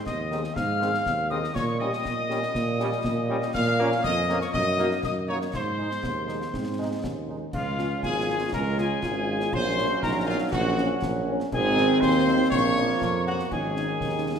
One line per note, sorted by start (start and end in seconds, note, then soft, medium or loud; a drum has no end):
0.06 0.48 D#2 medium
0.06 0.52 D#5 loud
0.06 0.53 D#6 medium
0.06 concert bass drum medium
0.06 snare medium
0.31 0.40 D#3 medium
0.31 0.40 C4 medium
0.31 0.41 D#4 medium
0.31 0.41 G#4 medium
0.31 snare medium
0.44 snare medium
0.55 0.98 G#2 medium
0.55 1.30 F5 loud
0.55 1.27 F6 loud
0.55 concert bass drum medium
0.55 snare medium
0.80 0.89 D#3 medium
0.80 0.89 C4 medium
0.80 0.90 C4 medium
0.80 0.90 D#4 medium
0.80 0.90 G#4 medium
0.80 snare medium
0.94 snare medium
1.06 1.48 D#2 medium
1.06 concert bass drum medium
1.06 snare medium
1.29 1.40 D#3 medium
1.29 1.39 C4 medium
1.29 1.40 C4 medium
1.29 1.40 D#4 medium
1.29 1.40 G#4 medium
1.29 1.55 D#5 loud
1.29 1.56 D#6 medium
1.44 snare medium
1.54 1.97 A#2 loud
1.54 1.65 C#5 loud
1.54 1.80 C#6 loud
1.54 concert bass drum medium
1.54 snare medium
1.54 crash soft
1.78 1.89 G3 medium
1.78 1.89 A#3 medium
1.78 1.89 C#4 medium
1.78 1.89 G4 medium
1.78 3.50 D#5 loud
1.78 3.51 D#6 loud
1.93 snare medium
2.05 2.47 A#2 medium
2.05 concert bass drum medium
2.05 snare medium
2.29 2.39 G3 medium
2.29 2.39 A#3 medium
2.29 2.39 C#4 medium
2.29 2.38 G4 medium
2.29 snare medium
2.42 snare medium
2.55 2.96 A#2 loud
2.55 concert bass drum medium
2.55 snare medium
2.79 2.89 G3 loud
2.79 2.89 A#3 medium
2.79 2.88 C#4 loud
2.79 2.88 C#4 medium
2.79 2.88 G4 medium
2.79 snare medium
2.92 snare medium
3.04 3.42 A#2 loud
3.04 concert bass drum medium
3.04 snare medium
3.29 3.38 G3 loud
3.29 3.39 A#3 medium
3.29 3.38 C#4 medium
3.29 3.38 G4 medium
3.42 snare medium
3.53 3.96 A#2 loud
3.53 4.00 F5 loud
3.53 4.01 F6 loud
3.53 concert bass drum medium
3.53 snare medium
3.53 crash soft
3.79 3.88 A#3 medium
3.79 3.88 A#3 loud
3.79 3.88 C#4 medium
3.79 3.89 C#4 loud
3.79 3.89 F4 medium
3.92 snare medium
4.04 4.46 F2 loud
4.04 4.39 D#5 loud
4.04 4.39 D#6 loud
4.04 concert bass drum medium
4.04 snare medium
4.29 4.38 A#3 medium
4.29 4.38 A#3 loud
4.29 4.38 C#4 medium
4.29 4.38 F4 medium
4.29 snare medium
4.41 4.47 C#5 loud
4.41 4.53 C#6 medium
4.41 snare medium
4.53 4.96 F#2 loud
4.53 5.00 D#5 loud
4.53 5.01 D#6 loud
4.53 concert bass drum medium
4.53 snare medium
4.78 4.87 A#3 loud
4.78 4.88 A#3 medium
4.78 4.87 D#4 loud
4.78 4.88 D#4 medium
4.78 4.88 F#4 medium
4.78 snare medium
4.91 snare medium
5.03 5.46 F#2 medium
5.03 5.15 D#5 loud
5.03 5.11 D#6 loud
5.03 concert bass drum medium
5.03 snare medium
5.27 5.37 A#3 medium
5.27 5.38 A#3 medium
5.27 5.37 D#4 medium
5.27 5.38 D#4 medium
5.27 5.38 F#4 medium
5.27 5.39 C#5 loud
5.27 5.36 C#6 medium
5.41 snare medium
5.54 5.95 G#2 medium
5.54 6.99 C5 loud
5.54 7.00 C6 medium
5.54 concert bass drum medium
5.54 snare medium
5.54 crash soft
5.78 5.87 G#3 medium
5.78 5.88 G#3 medium
5.78 5.87 D#4 medium
5.78 5.88 D#4 medium
5.91 snare medium
6.03 6.45 D#2 medium
6.03 6.50 G#3 medium
6.03 concert bass drum medium
6.03 snare medium
6.27 6.36 G#3 medium
6.27 6.38 G#3 medium
6.27 6.36 D#4 medium
6.27 6.38 D#4 medium
6.27 snare medium
6.42 snare medium
6.52 6.95 G#2 medium
6.52 6.99 C4 medium
6.52 concert bass drum medium
6.52 snare medium
6.78 6.87 G#3 medium
6.78 6.88 G#3 medium
6.78 6.87 D#4 medium
6.78 6.88 D#4 medium
7.02 7.45 D#2 medium
7.02 7.49 C#4 medium
7.02 concert bass drum medium
7.02 snare medium
7.29 7.37 G#3 medium
7.29 7.38 G#3 medium
7.29 7.38 D#4 medium
7.29 7.37 D#4 medium
7.53 7.95 C#2 medium
7.53 9.49 G#3 medium
7.53 9.49 C#4 medium
7.53 8.00 F4 loud
7.53 8.00 F5 loud
7.53 concert bass drum medium
7.53 crash medium
7.78 7.87 G#3 medium
7.78 7.87 C#4 medium
7.78 7.87 F4 medium
7.78 snare medium
8.03 8.45 G#1 medium
8.03 8.55 F4 medium
8.03 8.50 G#4 loud
8.03 8.49 G#5 medium
8.03 concert bass drum medium
8.03 snare medium
8.28 8.37 G#3 medium
8.28 8.37 C#4 medium
8.28 8.37 F4 medium
8.53 8.94 C#2 loud
8.53 9.01 C#4 loud
8.53 8.78 A#4 loud
8.53 8.59 A#5 loud
8.53 concert bass drum medium
8.53 snare medium
8.78 8.87 G#3 medium
8.78 8.87 C#4 medium
8.78 8.87 F4 medium
8.78 9.53 G#4 loud
8.78 9.55 G#5 loud
8.78 snare medium
9.02 9.44 G#1 loud
9.02 9.98 F4 loud
9.02 concert bass drum medium
9.02 snare medium
9.27 9.36 G#3 medium
9.27 9.36 C#4 medium
9.27 9.36 F4 medium
9.40 snare medium
9.52 9.94 A#1 loud
9.52 11.48 F#3 loud
9.52 11.48 C#4 loud
9.52 9.99 C5 loud
9.52 10.02 C6 loud
9.52 concert bass drum medium
9.52 crash soft
9.77 9.86 A#3 medium
9.77 9.86 C#4 medium
9.77 snare medium
10.01 10.39 A#1 medium
10.01 10.54 D#4 loud
10.01 10.27 A#4 loud
10.01 10.30 A#5 loud
10.01 concert bass drum medium
10.01 snare medium
10.25 10.36 A#3 medium
10.25 10.36 C#4 medium
10.25 10.37 F4 loud
10.25 10.53 F5 loud
10.51 10.94 A#1 loud
10.51 11.52 C#4 loud
10.51 11.23 F#4 loud
10.51 11.24 F#5 loud
10.51 concert bass drum medium
10.51 snare medium
10.77 10.86 A#3 medium
10.77 10.87 C#4 medium
10.77 snare medium
11.02 11.44 A#1 loud
11.02 concert bass drum medium
11.02 snare medium
11.28 11.37 A#3 medium
11.28 11.36 C#4 medium
11.40 snare medium
11.52 11.94 G#1 loud
11.52 12.48 D#3 loud
11.52 12.98 C4 loud
11.52 12.48 C4 loud
11.52 11.98 G#4 loud
11.52 11.99 G#5 loud
11.52 concert bass drum medium
11.52 crash soft
11.76 11.85 G#3 medium
11.76 11.85 C4 medium
11.76 11.86 D#4 medium
11.76 snare medium
12.00 12.43 D#2 loud
12.00 12.51 C5 loud
12.00 12.48 C6 loud
12.00 concert bass drum medium
12.00 snare medium
12.27 12.36 G#3 medium
12.27 12.36 C4 medium
12.27 12.36 D#4 medium
12.50 12.93 A#1 loud
12.50 13.52 F3 medium
12.50 13.52 A#3 loud
12.50 13.22 C#5 loud
12.50 13.23 C#6 loud
12.50 concert bass drum medium
12.50 snare medium
12.77 12.86 F3 medium
12.77 12.86 A#3 medium
12.77 12.86 C#4 medium
12.77 snare medium
13.01 13.43 F2 medium
13.01 13.53 A#3 medium
13.01 concert bass drum medium
13.01 snare medium
13.26 13.36 F3 medium
13.26 13.36 A#3 medium
13.26 13.35 C#4 medium
13.26 13.50 F#4 loud
13.26 13.33 F#5 medium
13.39 snare medium
13.51 13.93 G#1 medium
13.51 14.39 D#3 medium
13.51 14.39 C#4 medium
13.51 14.39 D#4 loud
13.51 14.39 G#4 loud
13.51 14.39 G#5 medium
13.51 concert bass drum medium
13.51 crash soft
13.76 13.86 G#3 medium
13.76 13.86 C#4 medium
13.76 13.85 D#4 medium
13.76 snare medium
14.01 14.39 D#2 medium
14.01 concert bass drum medium
14.01 snare medium
14.26 14.36 G#3 medium
14.26 14.35 C#4 medium
14.26 14.36 D#4 medium